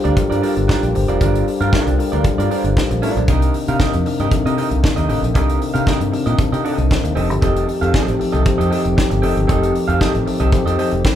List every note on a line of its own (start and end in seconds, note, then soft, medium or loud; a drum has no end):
0.00 3.24 F3 medium
0.00 0.17 G3 medium
0.00 7.12 A#3 medium
0.00 0.17 D4 medium
0.00 0.17 F4 medium
0.00 3.24 G4 medium
0.00 0.18 A4 medium
0.00 0.18 A#4 medium
0.00 0.15 C5 medium
0.04 0.15 D2 medium
0.04 0.15 D4 medium
0.04 0.15 F4 medium
0.04 0.16 A#4 medium
0.04 0.16 D5 medium
0.04 closed hi-hat soft
0.16 0.40 G3 medium
0.16 0.40 D4 medium
0.16 0.40 F4 medium
0.16 0.41 A4 medium
0.16 0.41 A#4 loud
0.16 muted clean electric guitar stroke soft
0.16 kick loud
0.16 closed hi-hat medium
0.30 0.41 G2 medium
0.30 0.41 D4 medium
0.30 0.41 F4 medium
0.30 0.42 A#4 medium
0.30 0.42 D5 medium
0.30 closed hi-hat soft
0.42 0.89 G3 medium
0.42 0.59 D4 medium
0.42 0.89 D4 medium
0.42 0.55 F4 medium
0.42 0.89 F4 medium
0.42 0.90 A4 medium
0.42 0.55 A#4 medium
0.42 0.90 A#4 medium
0.42 0.54 D5 medium
0.42 open hi-hat medium
0.56 0.67 G1 medium
0.56 muted clean electric guitar stroke medium
0.56 closed hi-hat soft
0.68 0.85 D4 medium
0.68 0.82 F4 medium
0.68 0.82 A#4 medium
0.68 0.81 D5 medium
0.68 kick loud
0.68 snare loud
0.82 0.93 A#1 medium
0.82 muted clean electric guitar stroke soft
0.82 closed hi-hat soft
0.94 1.07 G1 medium
0.94 1.18 G3 medium
0.94 1.18 D4 medium
0.94 1.18 F4 medium
0.94 1.18 A4 medium
0.94 1.18 C5 medium
0.94 muted clean electric guitar stroke soft
0.94 open hi-hat medium
1.08 1.19 F1 medium
1.08 1.19 D4 soft
1.08 1.20 F4 medium
1.08 1.20 A#4 soft
1.08 1.20 D5 medium
1.08 closed hi-hat medium
1.20 1.42 G1 medium
1.20 1.56 G3 medium
1.20 1.56 D4 medium
1.20 1.45 D4 medium
1.20 1.56 F4 medium
1.20 1.45 F4 medium
1.20 1.56 A4 medium
1.20 1.56 A#4 medium
1.20 1.45 A#4 medium
1.20 1.45 D5 medium
1.20 kick medium
1.20 closed hi-hat medium
1.35 closed hi-hat soft
1.47 muted clean electric guitar stroke soft
1.47 open hi-hat medium
1.60 1.71 G2 loud
1.60 1.94 G3 medium
1.60 1.94 D4 medium
1.60 1.71 D4 medium
1.60 1.95 F4 medium
1.60 1.72 F4 medium
1.60 1.95 A4 medium
1.60 1.72 A#4 medium
1.60 1.95 A#4 medium
1.60 1.72 F5 medium
1.60 closed hi-hat medium
1.72 1.93 D4 medium
1.72 1.86 F4 medium
1.72 1.85 A#4 medium
1.72 1.85 D5 medium
1.72 kick loud
1.72 snare loud
1.86 1.97 C2 medium
1.86 muted clean electric guitar stroke soft
1.86 closed hi-hat soft
1.98 2.21 G3 medium
1.98 2.22 D4 medium
1.98 2.22 F4 medium
1.98 2.22 A4 medium
1.98 2.22 A#4 loud
1.98 muted clean electric guitar stroke soft
1.98 open hi-hat medium
2.12 2.23 D2 medium
2.12 2.23 D4 soft
2.12 2.24 F4 medium
2.12 2.24 A#4 medium
2.12 2.24 D5 medium
2.12 closed hi-hat soft
2.23 2.47 G3 medium
2.23 2.47 D4 medium
2.23 2.48 F4 medium
2.23 2.48 A4 medium
2.23 2.48 A#4 medium
2.23 muted clean electric guitar stroke soft
2.23 kick loud
2.23 closed hi-hat medium
2.38 2.48 G2 medium
2.38 2.49 D4 medium
2.38 2.50 F4 medium
2.38 2.50 A#4 medium
2.38 2.50 D5 medium
2.38 closed hi-hat medium
2.49 2.96 G3 medium
2.49 2.97 D4 medium
2.49 2.67 D4 medium
2.49 2.97 F4 medium
2.49 2.65 F4 medium
2.49 2.97 A4 medium
2.49 2.64 A#4 medium
2.49 2.57 B4 medium
2.49 2.64 D5 medium
2.49 open hi-hat medium
2.57 3.00 C5 medium
2.64 2.74 G1 loud
2.64 muted clean electric guitar stroke soft
2.64 closed hi-hat soft
2.77 muted clean electric guitar stroke soft
2.77 kick loud
2.77 snare loud
2.91 3.03 A#1 medium
2.91 muted clean electric guitar stroke soft
2.91 closed hi-hat soft
3.01 3.14 A1 medium
3.01 3.25 G3 medium
3.01 3.25 D4 medium
3.01 3.23 D4 medium
3.01 3.25 F4 medium
3.01 3.16 F4 medium
3.01 3.26 A4 medium
3.01 3.26 A#4 medium
3.01 3.16 A#4 medium
3.01 3.16 D5 medium
3.01 open hi-hat medium
3.17 3.26 A#1 loud
3.17 muted clean electric guitar stroke soft
3.17 closed hi-hat soft
3.27 3.49 C2 loud
3.27 3.63 C3 medium
3.27 7.13 C3 medium
3.27 7.13 D#3 medium
3.27 3.63 C4 medium
3.27 3.63 D4 medium
3.27 3.63 D#4 medium
3.27 3.53 D#4 medium
3.27 3.53 G4 medium
3.27 3.63 A#4 medium
3.27 3.53 A#4 medium
3.27 3.53 D#5 medium
3.27 kick loud
3.27 closed hi-hat medium
3.42 closed hi-hat soft
3.54 muted clean electric guitar stroke soft
3.54 open hi-hat medium
3.66 4.01 C3 medium
3.66 3.78 C3 loud
3.66 4.01 C4 medium
3.66 4.01 D4 medium
3.66 4.02 D#4 medium
3.66 3.79 D#4 medium
3.66 3.80 G4 medium
3.66 4.02 A#4 medium
3.66 3.80 A#4 medium
3.66 3.80 F5 medium
3.66 closed hi-hat medium
3.80 3.97 D#4 medium
3.80 3.94 G4 loud
3.80 3.94 A#4 medium
3.80 3.93 D#5 loud
3.80 kick loud
3.80 snare medium
3.93 4.04 F2 medium
3.93 muted clean electric guitar stroke soft
3.93 closed hi-hat soft
4.04 4.28 C3 medium
4.04 4.29 C4 medium
4.04 4.29 D4 medium
4.04 4.29 D#4 medium
4.04 4.29 A#4 loud
4.04 muted clean electric guitar stroke soft
4.04 open hi-hat medium
4.19 4.30 G2 medium
4.19 4.31 D#4 medium
4.19 4.31 G4 medium
4.19 4.31 A#4 medium
4.19 4.31 D#5 medium
4.19 closed hi-hat soft
4.30 4.54 C3 medium
4.30 4.54 C4 medium
4.30 4.55 D4 medium
4.30 4.55 D#4 medium
4.30 4.55 A4 medium
4.30 muted clean electric guitar stroke soft
4.30 muted fingered electric bass stroke soft
4.30 kick loud
4.30 closed hi-hat medium
4.45 4.55 C3 medium
4.45 4.56 D#4 medium
4.45 4.57 G4 medium
4.45 4.57 A#4 medium
4.45 4.57 D#5 medium
4.45 closed hi-hat soft
4.57 5.04 C3 medium
4.57 5.04 C4 medium
4.57 5.04 D4 medium
4.57 4.74 D#4 medium
4.57 5.04 D#4 medium
4.57 4.71 G4 medium
4.57 5.04 A#4 medium
4.57 4.70 A#4 medium
4.57 4.69 D#5 medium
4.57 open hi-hat medium
4.70 4.81 C2 medium
4.70 muted clean electric guitar stroke medium
4.70 closed hi-hat soft
4.83 muted clean electric guitar stroke soft
4.83 kick loud
4.83 snare loud
4.96 5.07 D#2 medium
4.96 5.08 D#4 soft
4.96 5.08 G4 soft
4.96 5.09 A#4 medium
4.96 5.08 D#5 medium
4.96 closed hi-hat soft
5.08 5.21 A1 medium
5.08 5.32 C3 medium
5.08 5.32 C4 medium
5.08 5.33 D4 medium
5.08 5.25 D#4 medium
5.08 5.33 D#4 medium
5.08 5.23 G4 medium
5.08 5.33 A4 medium
5.08 5.22 A#4 medium
5.08 5.22 D#5 medium
5.08 open hi-hat medium
5.23 5.35 A#1 medium
5.23 muted clean electric guitar stroke soft
5.23 closed hi-hat soft
5.34 5.57 C2 medium
5.34 5.70 C3 medium
5.34 5.70 C4 medium
5.34 5.70 D4 medium
5.34 5.59 D#4 medium
5.34 5.71 D#4 medium
5.34 5.59 G4 medium
5.34 5.59 A#4 medium
5.34 5.71 A#4 medium
5.34 5.60 D#5 medium
5.34 kick medium
5.34 closed hi-hat medium
5.49 closed hi-hat soft
5.61 muted clean electric guitar stroke soft
5.61 open hi-hat medium
5.74 6.09 C3 medium
5.74 5.85 C3 medium
5.74 6.09 C4 medium
5.74 6.09 D4 medium
5.74 5.85 D#4 soft
5.74 6.09 D#4 medium
5.74 5.86 G4 medium
5.74 5.86 A#4 medium
5.74 6.09 A#4 medium
5.74 5.86 F5 medium
5.74 closed hi-hat medium
5.86 6.03 D#4 medium
5.86 6.00 G4 medium
5.86 5.99 A#4 medium
5.86 5.99 D#5 medium
5.86 kick loud
5.86 snare medium
6.00 6.11 G2 medium
6.00 muted clean electric guitar stroke soft
6.00 closed hi-hat soft
6.12 6.36 C3 medium
6.12 6.36 C4 medium
6.12 6.36 D4 medium
6.12 6.36 D#4 medium
6.12 6.36 A#4 medium
6.12 muted clean electric guitar stroke soft
6.12 open hi-hat medium
6.26 6.37 A#2 medium
6.26 6.37 D#4 soft
6.26 6.38 G4 medium
6.26 6.38 A#4 soft
6.26 6.38 D#5 medium
6.26 closed hi-hat soft
6.38 6.52 C5 soft
6.38 6.52 A5 medium
6.38 muted clean electric guitar stroke soft
6.38 kick loud
6.38 closed hi-hat medium
6.52 6.63 C3 medium
6.52 6.63 D#4 medium
6.52 6.63 G4 medium
6.52 6.64 A#4 medium
6.52 6.64 D#5 medium
6.52 6.64 G5 medium
6.52 closed hi-hat medium
6.64 6.85 D#4 medium
6.64 6.78 G4 medium
6.64 6.78 A4 medium
6.64 6.77 A#4 medium
6.64 6.77 D#5 medium
6.64 6.77 F5 medium
6.64 open hi-hat medium
6.78 6.88 C2 loud
6.78 6.90 G4 medium
6.78 6.90 D#5 medium
6.78 muted clean electric guitar stroke soft
6.78 closed hi-hat soft
6.90 7.04 D#4 medium
6.90 7.04 C5 medium
6.90 muted clean electric guitar stroke soft
6.90 kick loud
6.90 snare loud
7.03 7.14 D#2 medium
7.03 7.29 D4 soft
7.03 7.28 A#4 soft
7.03 muted clean electric guitar stroke soft
7.03 closed hi-hat soft
7.15 7.30 F1 medium
7.15 11.15 D#3 medium
7.15 7.74 F3 medium
7.15 11.15 A3 medium
7.15 7.74 C4 medium
7.15 7.32 C4 medium
7.15 7.74 D#4 medium
7.15 7.30 G4 medium
7.15 7.74 G4 medium
7.15 11.15 G4 medium
7.15 7.29 A4 medium
7.15 7.75 A4 medium
7.15 7.29 D#5 medium
7.15 open hi-hat medium
7.30 7.40 G1 medium
7.30 muted clean electric guitar stroke soft
7.30 closed hi-hat soft
7.42 7.64 F1 medium
7.42 7.66 C4 medium
7.42 7.66 G4 medium
7.42 7.66 A4 medium
7.42 7.67 D#5 medium
7.42 kick loud
7.42 closed hi-hat medium
7.56 closed hi-hat medium
7.68 muted clean electric guitar stroke soft
7.68 open hi-hat medium
7.80 7.92 F2 loud
7.80 8.15 F3 medium
7.80 8.15 C4 medium
7.80 7.92 C4 soft
7.80 8.16 D#4 medium
7.80 8.16 G4 medium
7.80 7.92 G4 medium
7.80 8.16 A4 medium
7.80 7.93 A4 medium
7.80 7.93 F5 medium
7.80 closed hi-hat soft
7.93 8.14 C4 medium
7.93 8.06 G4 medium
7.93 8.06 A4 medium
7.93 8.06 D#5 medium
7.93 kick loud
7.93 snare medium
8.07 8.18 A1 medium
8.07 muted clean electric guitar stroke medium
8.07 closed hi-hat soft
8.19 8.43 F3 medium
8.19 8.43 C4 medium
8.19 8.43 D#4 medium
8.19 8.43 G4 medium
8.19 8.43 A4 medium
8.19 muted clean electric guitar stroke soft
8.19 open hi-hat medium
8.32 8.44 C2 medium
8.32 8.43 C4 soft
8.32 8.44 G4 medium
8.32 8.44 A4 medium
8.32 8.44 D#5 medium
8.32 closed hi-hat soft
8.44 8.69 F3 medium
8.44 8.69 C4 medium
8.44 8.69 D#4 medium
8.44 8.69 G4 medium
8.44 8.69 C5 medium
8.44 muted clean electric guitar stroke soft
8.44 kick loud
8.44 closed hi-hat medium
8.58 8.70 F2 medium
8.58 8.69 C4 soft
8.58 8.70 G4 medium
8.58 8.70 A4 medium
8.58 8.70 D#5 medium
8.58 closed hi-hat medium
8.70 9.17 F3 medium
8.70 8.87 C4 medium
8.70 9.18 C4 medium
8.70 9.18 D#4 medium
8.70 8.84 G4 medium
8.70 9.18 G4 medium
8.70 8.84 A4 medium
8.70 9.18 A4 medium
8.70 8.83 D#5 loud
8.70 open hi-hat medium
8.84 8.95 F1 medium
8.84 muted clean electric guitar stroke soft
8.84 closed hi-hat soft
8.97 muted clean electric guitar stroke soft
8.97 kick loud
8.97 snare loud
9.10 9.23 G1 medium
9.10 muted clean electric guitar stroke soft
9.10 closed hi-hat soft
9.22 9.35 F1 medium
9.22 9.46 F3 medium
9.22 9.39 C4 medium
9.22 9.46 C4 medium
9.22 9.46 D#4 medium
9.22 9.35 G4 medium
9.22 9.47 G4 medium
9.22 9.35 A4 medium
9.22 9.47 A4 medium
9.22 9.35 D#5 medium
9.22 open hi-hat medium
9.36 9.47 G1 medium
9.36 muted clean electric guitar stroke soft
9.36 closed hi-hat soft
9.47 9.71 F1 medium
9.47 9.84 F3 medium
9.47 9.72 C4 medium
9.47 9.84 C4 medium
9.47 9.84 D#4 medium
9.47 9.73 G4 medium
9.47 9.85 G4 medium
9.47 9.73 A4 medium
9.47 9.85 A4 medium
9.47 9.73 D#5 medium
9.47 kick medium
9.47 closed hi-hat medium
9.63 closed hi-hat soft
9.74 muted clean electric guitar stroke soft
9.74 open hi-hat medium
9.88 9.99 F2 medium
9.88 10.23 F3 medium
9.88 10.23 C4 medium
9.88 9.99 C4 medium
9.88 10.23 D#4 medium
9.88 9.99 G4 medium
9.88 10.23 G4 medium
9.88 9.99 A4 medium
9.88 10.24 A4 medium
9.88 10.00 F5 medium
9.88 closed hi-hat soft
10.00 10.17 C4 medium
10.00 10.14 G4 medium
10.00 10.13 A4 medium
10.00 10.13 D#5 medium
10.00 kick medium
10.00 snare medium
10.14 10.25 A1 medium
10.14 muted clean electric guitar stroke soft
10.14 closed hi-hat soft
10.26 10.50 F3 medium
10.26 10.50 C4 medium
10.26 10.50 D#4 medium
10.26 10.50 G4 medium
10.26 10.51 A4 medium
10.26 muted clean electric guitar stroke soft
10.26 open hi-hat medium
10.40 10.50 C2 medium
10.40 10.51 C4 soft
10.40 10.51 G4 medium
10.40 10.51 A4 medium
10.40 10.51 D#5 medium
10.40 closed hi-hat soft
10.52 10.76 F3 medium
10.52 10.76 C4 medium
10.52 10.76 D#4 medium
10.52 10.76 G4 medium
10.52 10.76 C5 medium
10.52 muted clean electric guitar stroke soft
10.52 kick loud
10.52 closed hi-hat medium
10.66 10.76 F2 medium
10.66 10.77 C4 medium
10.66 10.77 G4 medium
10.66 10.78 A4 medium
10.66 10.78 D#5 medium
10.66 closed hi-hat medium
10.77 11.15 F3 medium
10.77 11.15 C4 medium
10.77 10.95 C4 medium
10.77 11.15 D#4 medium
10.77 11.15 G4 medium
10.77 10.92 G4 loud
10.77 10.92 A4 medium
10.77 11.15 C5 medium
10.77 10.91 D#5 loud
10.77 open hi-hat medium
10.91 11.02 F1 medium
10.91 muted clean electric guitar stroke soft
10.91 closed hi-hat soft
11.05 muted clean electric guitar stroke soft
11.05 kick loud
11.05 snare loud